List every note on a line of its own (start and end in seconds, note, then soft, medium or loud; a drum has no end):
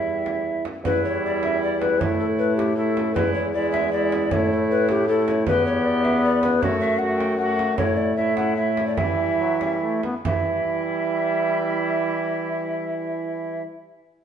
0.00 0.65 E2 medium
0.00 0.65 G3 medium
0.00 0.64 E4 medium
0.00 0.64 E5 medium
0.26 frame drum soft
0.65 frame drum soft
0.84 2.02 E2 medium
0.84 2.02 G3 medium
0.84 1.96 E4 medium
0.84 1.03 B4 loud
0.84 frame drum medium
1.04 1.23 C#5 loud
1.25 1.43 D5 loud
1.43 1.62 E5 loud
1.43 frame drum medium
1.62 1.80 D5 loud
1.80 2.01 B4 loud
1.80 frame drum medium
2.00 3.15 A2 medium
2.00 2.77 A3 medium
2.00 2.76 E4 medium
2.00 2.19 C#5 loud
2.00 frame drum medium
2.19 2.25 A4 loud
2.38 2.56 B4 loud
2.56 2.76 G4 loud
2.56 frame drum medium
2.76 3.17 A3 medium
2.76 3.15 E4 medium
2.76 3.13 A4 loud
2.97 frame drum medium
3.14 4.32 E2 medium
3.14 3.54 G#3 medium
3.14 3.53 E4 medium
3.14 3.33 B4 loud
3.14 frame drum medium
3.33 3.52 C#5 loud
3.53 3.92 G#3 medium
3.53 3.92 E4 medium
3.53 3.71 D5 loud
3.72 3.91 E5 loud
3.72 frame drum medium
3.92 4.34 G#3 medium
3.92 4.31 E4 medium
3.92 4.33 D5 loud
4.12 frame drum medium
4.30 5.46 A2 medium
4.30 5.07 A3 medium
4.30 5.07 E4 medium
4.30 4.51 C#5 loud
4.30 frame drum medium
4.52 4.58 A4 loud
4.71 4.89 B4 loud
4.89 5.08 G4 loud
4.89 frame drum medium
5.08 5.46 A3 medium
5.08 5.46 E4 medium
5.08 5.27 A4 loud
5.28 5.46 C#5 loud
5.28 frame drum medium
5.47 6.63 E2 medium
5.47 6.64 B3 loud
5.47 6.31 G4 loud
5.47 5.66 B4 loud
5.47 frame drum medium
5.66 5.87 C#5 loud
5.85 6.05 D5 loud
6.04 6.23 E5 loud
6.04 frame drum medium
6.24 6.42 D5 loud
6.43 6.63 B4 loud
6.43 frame drum medium
6.61 7.78 F#2 medium
6.61 7.00 A3 medium
6.61 7.00 F#4 medium
6.61 6.80 C#5 loud
6.61 frame drum medium
6.80 7.00 E5 loud
6.98 7.38 A3 medium
6.98 7.39 F#4 medium
6.98 7.19 F#5 loud
7.18 7.37 G5 loud
7.18 frame drum medium
7.38 7.77 A3 medium
7.38 7.77 F#4 medium
7.38 7.77 F#5 loud
7.59 frame drum medium
7.77 8.99 A2 medium
7.77 8.17 A3 medium
7.77 8.16 E4 medium
7.77 7.98 C#5 loud
7.77 frame drum medium
7.97 8.16 D5 loud
8.17 8.57 A3 medium
8.17 8.56 E4 medium
8.17 8.36 E5 loud
8.37 8.56 F#5 loud
8.37 frame drum medium
8.56 9.00 A3 medium
8.56 8.96 E4 medium
8.56 8.86 E5 loud
8.77 frame drum medium
8.87 8.99 D5 medium
8.96 10.04 E3 medium
8.96 9.36 G3 medium
8.96 10.01 E4 medium
8.96 10.04 E5 loud
8.96 frame drum medium
9.40 9.63 F#3 medium
9.61 9.81 G3 medium
9.61 frame drum medium
9.82 10.03 A3 medium
10.03 10.14 B3 medium
10.03 frame drum medium
10.25 13.63 E3 medium
10.25 13.63 G3 medium
10.25 13.62 E4 medium
10.25 10.30 F#4 medium
10.25 13.63 E5 medium
10.25 frame drum medium